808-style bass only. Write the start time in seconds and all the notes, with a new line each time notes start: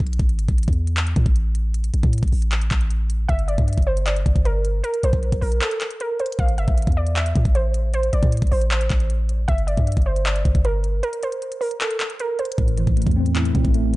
0.00 A#1
0.20 A1
0.39 G1
0.49 A1
0.68 E2
1.16 A2
1.26 A1
1.94 A1
2.03 A2
2.23 A1
2.32 A1
2.71 A1
3.29 G1
3.58 G2
3.78 G1
4.26 G1
4.36 G1
5.03 A#1
5.13 A#1
5.32 A#1
5.42 A#1
6.39 A1
6.58 G1
6.68 A1
6.87 E2
7.36 A2
7.45 A1
8.13 A1
8.23 A2
8.42 A1
8.52 A1
8.90 A1
9.49 G1
9.78 G2
9.97 G1
10.45 G1
10.55 G1
12.58 A1
12.78 G1
12.87 A1
13.07 E2
13.55 A2
13.65 A1